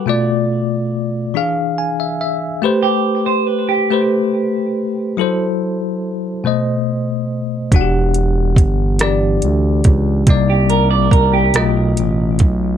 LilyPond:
<<
  \new Staff \with { instrumentName = "Clean electric guitar" } { \time 6/8 \key e \minor \tempo 4. = 47 r2. | r16 g'8 c''16 b'16 g'4. r16 | r2. | r2. |
r16 g'16 bes'16 d''16 bes'16 g'8 r4 r16 | }
  \new Staff \with { instrumentName = "Tine electric piano" } { \time 6/8 \key e \minor << { r2 gis''16 e''16 e''8 | r2. | r2. | r2. |
r2. | } \\ { <b, a f' d''>4. <e d' gis' f''>4. | <a g' b' c''>4. <a g' b' c''>4. | <fis e' a' c''>4. <b, a c'' dis''>4. | <e d' fis' g' fis''>4. <e d' g' d''>4. |
<c bes ees' d''>4. <b, a eis' dis''>4. | } >> }
  \new Staff \with { instrumentName = "Analog synth bass" } { \clef bass \time 6/8 \key e \minor r2. | r2. | r2. | e,,4 g,,4 d,8 cis,8 |
c,4 c,8 b,,8 a,,8 b,,8 | }
  \new DrumStaff \with { instrumentName = "Drums" } \drummode { \time 6/8 r4. r4. | r4. r4. | r4. r4. | <hh bd>8 hh8 <hh bd>8 <hh ss>8 hh8 <hh bd>8 |
<hh bd>8 hh8 <hh bd>8 <hh ss>8 hh8 <hh bd>8 | }
>>